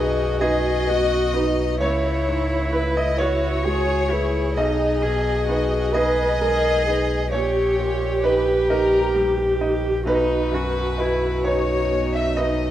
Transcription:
Already playing: B1 F#2 D#4 F#4 G#4 B4 D#5
0.40 D#4 F#4 G#4 B4 D#5
0.87 B3 F#4
1.34 D#4 B4
1.80 C#2 E4 C#5
2.28 G#2
2.73 E4 B4
2.96 D#5
3.18 E4 F#4 B4 C#5
3.64 G#3 F#4 G#4
4.10 E4 G#4 B4
4.56 B1 D#4 G#4 D#5
5.02 B2 G#4
5.48 D#4 F#4 B4
5.93 D#4 G#4 B4 D#5
6.41 G#3 A#4
6.85 D#4 G#4 B4
7.31 A#1 G4 C#5
7.79 A#2
8.24 D#4 B4 D#5
8.69 D#4 G4 A#4 D#5
9.15 G3
9.61 D#4 D#5
10.05 B1 D#4 F#4 B4
10.52 F#2 F#4
10.98 E4 B4 D#5
11.44 D#4 B4 C#5
11.91 B3
12.15 E5
12.37 D#4 B4 D#5

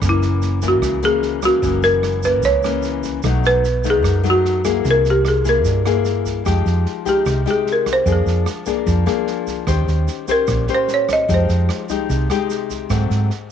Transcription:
0.02 F#1 F#2 E3 A#3 C#4, kick, cross-stick, snare, shaker
0.09 E4
0.22 snare, shaker
0.42 snare, shaker
0.62 E3 A#3 C#4, kick, snare, shaker
0.68 F#4
0.82 C#2 C#3, kick, cross-stick, snare, shaker
1.02 E3 A#3 C#4 G#4, snare, shaker
1.22 snare
1.42 E3 A#3 C#4 F#4, kick, cross-stick, snare, shaker
1.62 F#1 F#2 E3 A#3 C#4, kick, snare, shaker
1.82 A#4, snare, shaker
2.03 cross-stick, snare
2.23 E3 A#3 C#4 B4, kick, snare, shaker
2.43 C#2 C#3 C#5, kick, snare, shaker
2.63 E3 A#3 C#4, cross-stick, snare, shaker
2.83 snare, shaker
3.03 kick, snare, shaker
3.23 B1 B2 F#3 A3 D#4, kick, cross-stick, snare, shaker
3.44 B4, snare, shaker
3.64 snare, shaker
3.84 F#3 A3 D#4, kick, snare, shaker
3.90 G#4
4.03 F#2, kick, cross-stick, snare, shaker
4.24 F#3 A3 D#4, snare, shaker
4.30 F#4
4.45 snare
4.64 A#3 E4 G#4, kick, cross-stick, snare, shaker
4.85 C2 C3, kick, snare, shaker
4.91 A#4
5.05 snare, shaker
5.10 G4
5.25 G#4, cross-stick, snare
5.44 A#3 E4 G#4, kick, snare, shaker
5.49 A#4
5.64 G2, kick, snare, shaker
5.85 A#3 E4 G#4, cross-stick, snare, shaker
6.05 snare, shaker
6.26 kick, snare, shaker
6.45 F2 F3 G#3 D#4 G4, kick, cross-stick, snare, shaker
6.66 F2, snare, shaker
6.86 snare
7.05 G#3 D#4 G4, kick, snare, shaker
7.26 C2 C3, kick, cross-stick, snare, shaker
7.46 G#3 D#4 G4, snare, shaker
7.51 G#4
7.67 snare
7.73 A#4
7.86 kick, cross-stick, snare, shaker
7.93 C5
8.06 F2 F3 A#3 D4 G#4, kick, snare, shaker
8.12 G#4
8.26 F2, snare, shaker
8.46 cross-stick, snare, shaker
8.66 A#3 D4 G#4, kick, snare, shaker
8.86 F2 F3, kick, snare, shaker
9.06 A#3 D4 G#4, cross-stick, snare, shaker
9.27 snare
9.47 kick, snare, shaker
9.67 D#2 D#3 C#4 G4 C5, kick, cross-stick, snare, shaker
9.87 D#2, snare, shaker
10.08 snare, shaker
10.28 C#4 G4 A#4 C5, kick, snare, shaker
10.47 A#1 A#2, kick, cross-stick, snare, shaker
10.68 C#4 G4 C5, snare, shaker
10.75 C5
10.88 snare, shaker
10.94 C#5
11.09 kick, cross-stick, snare, shaker
11.13 D#5
11.28 F2 F3 G#3 D#4 G4, kick, snare, shaker
11.34 C5
11.49 F2, snare, shaker
11.69 cross-stick, snare
11.89 G#3 D#4 G4, kick, snare, shaker
12.10 C2 C3, kick, snare, shaker
12.30 G#3 D#4 G4, cross-stick, snare, shaker
12.50 snare, shaker
12.70 kick, snare, shaker
12.89 G#2 F#3 A3 C4, kick, cross-stick, snare, shaker
13.10 G#2, snare, shaker
13.30 snare

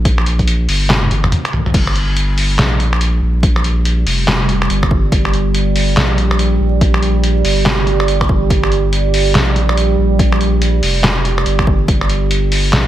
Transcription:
Already playing: A#1
0.05 kick, closed hi-hat
0.18 finger snap
0.26 closed hi-hat
0.39 kick, closed hi-hat
0.48 closed hi-hat
0.69 G1, open hi-hat
0.90 snare, clap, closed hi-hat, high tom
1.03 high tom
1.11 G1, closed hi-hat
1.24 finger snap, mid tom
1.32 closed hi-hat, mid tom
1.45 finger snap, closed hi-hat
1.53 mid tom
1.66 mid tom
1.74 G1 G3, kick, closed hi-hat, crash
1.87 finger snap
1.96 closed hi-hat
2.17 closed hi-hat
2.38 open hi-hat
2.59 A#1, snare, clap, closed hi-hat
2.80 closed hi-hat
2.93 finger snap
3.01 closed hi-hat
3.22 A#1
3.43 kick, closed hi-hat
3.56 finger snap
3.64 closed hi-hat
3.85 closed hi-hat
4.07 F1, open hi-hat
4.28 snare, clap, closed hi-hat
4.49 closed hi-hat
4.62 finger snap
4.70 G1, closed hi-hat
4.83 finger snap, kick
4.91 kick
5.12 G1, kick, closed hi-hat
5.25 finger snap
5.34 closed hi-hat
5.55 closed hi-hat
5.76 open hi-hat
5.97 A#1, snare, clap, closed hi-hat
6.18 closed hi-hat
6.31 finger snap
6.39 closed hi-hat
6.60 A#1
6.81 kick, closed hi-hat
6.94 finger snap
7.03 closed hi-hat
7.24 closed hi-hat
7.45 G1, open hi-hat
7.66 snare, clap, closed hi-hat
7.87 closed hi-hat
8.00 finger snap
8.08 closed hi-hat
8.21 finger snap, kick
8.29 G1, kick
8.50 G1, kick, closed hi-hat
8.63 finger snap
8.72 closed hi-hat
8.93 closed hi-hat
9.14 open hi-hat
9.35 A#1, snare, clap, closed hi-hat
9.56 closed hi-hat
9.69 finger snap
9.77 closed hi-hat
9.98 A#1
10.19 kick, closed hi-hat
10.32 finger snap
10.41 closed hi-hat
10.62 closed hi-hat
10.83 F1, open hi-hat
11.04 snare, clap, closed hi-hat
11.25 closed hi-hat
11.38 finger snap
11.46 G1, closed hi-hat
11.59 finger snap, kick
11.67 kick
11.88 G1, kick, closed hi-hat
12.01 finger snap
12.09 closed hi-hat
12.31 closed hi-hat
12.52 open hi-hat
12.73 A#1, snare, clap, closed hi-hat

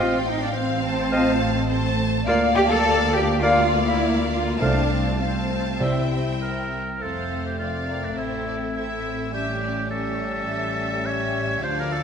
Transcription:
Already playing: F4 D#5 F5 G5
0.00 A1 C4 F4
0.25 D#4 D#5
0.40 D4 D5
0.52 C4 C5 F5
0.84 A5
1.11 A3 C4 F4 D#5 F5
1.69 A3 C5 A5
2.26 D2 A#3 F4 D5 F5
2.54 G4 G5
2.68 A4 A5
3.11 G4 G5
3.40 A#3 F4 D5 F5
3.85 E4 E5
4.31 F4 F5
4.60 C2 C3 A3 C4 D4 F4 C5 D5 F5 A5
5.21 A3 C4 F4 C5 F5 A5
5.80 C3 G3 C4 E4 C5 E5 G5
6.42 A#4
7.00 F1 F2 A3 C4 A4 C5 F5
7.46 G4
7.58 C4 F4 C5 D5 F5
7.88 A#4
8.04 D4
8.18 A1 A2 C4 E4 A4 C5 E5
8.47 D5
8.75 C4 E4 A4 E5
9.31 G3 C#4 G4 E5
9.63 D5
9.91 C#4 G4 A4 C#5 E5
10.47 E5
11.06 C#4 G4 C#5 E5
11.62 D2 D3 F3 D4 F4 C5 D5 F5
11.80 A#4
11.93 A4

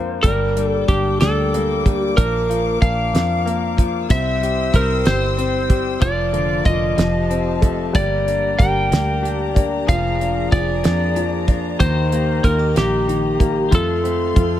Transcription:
Already playing: F2 F3 A#3 C4 D4 F4 C5
0.22 G1 G3 A#3 D4 A#4 G5 D6, kick, closed hi-hat
0.57 G3 D4, closed hi-hat
0.67 A4
0.88 G1 G3 D4 G4, kick, closed hi-hat
1.21 D2 G3 D4 A4, snare, closed hi-hat
1.54 G3 A#3, closed hi-hat
1.86 G3 D4, kick, closed hi-hat
1.91 G4
2.17 A#1 F3 A#3 D4 A#4 F5, kick, closed hi-hat
2.49 F3 F4, closed hi-hat
2.82 A#1 A#3 D4 F5, kick, closed hi-hat
3.14 F2 F3 F4, snare, closed hi-hat
3.46 A#3, closed hi-hat
3.77 F3 F4, kick, closed hi-hat
4.09 C2 G3 C4 E4 C5 E5 G5 E6, kick, closed hi-hat
4.41 G3 G4, closed hi-hat
4.73 C2 C4 E4 A#4, kick, closed hi-hat
5.05 G1 G3 G4 C5, snare, closed hi-hat
5.37 C4, closed hi-hat
5.69 G3 G4, kick, closed hi-hat
6.00 F1 F3 F4 A#4 D5 F5 D6, kick, closed hi-hat
6.33 D3 A#3, closed hi-hat
6.65 F1 F3 F4 D#5, kick, closed hi-hat
6.97 F1 F3 G4 F5 A5, snare, closed hi-hat
7.30 C4, closed hi-hat
7.61 A3 A4, kick, closed hi-hat
7.93 G1 G3 A#3 G4 D5 A#5, kick, closed hi-hat
8.25 A#3 D4, closed hi-hat
8.59 G1 G4 A#4 G5, kick, closed hi-hat
8.91 D2 A#3 D4, snare, closed hi-hat
9.23 D4 G4, closed hi-hat
9.55 A#3 D4, kick, closed hi-hat
9.87 F1 F3 G#4 F5, kick, closed hi-hat
10.20 A#3 D4, closed hi-hat
10.52 F1 F3 G#4 D5, kick, closed hi-hat
10.83 F2 A#3 D4, snare, closed hi-hat
11.15 F3 D4, closed hi-hat
11.47 A#3 D4, kick, closed hi-hat
11.79 D#2 D#3 A#3 G4 C5 D#5, kick, closed hi-hat
12.12 A#3, closed hi-hat
12.43 D#2 D#3 F4 A#4, kick, closed hi-hat
12.59 G4
12.76 A#1 A#3 G4, snare, closed hi-hat
13.07 D#3 D#4, closed hi-hat
13.39 A#3, kick, closed hi-hat
13.71 F2 F3 A3 F4 A4 F5 C6, kick, closed hi-hat
14.03 A3 C4, closed hi-hat
14.36 F2 F3 F4, kick, closed hi-hat

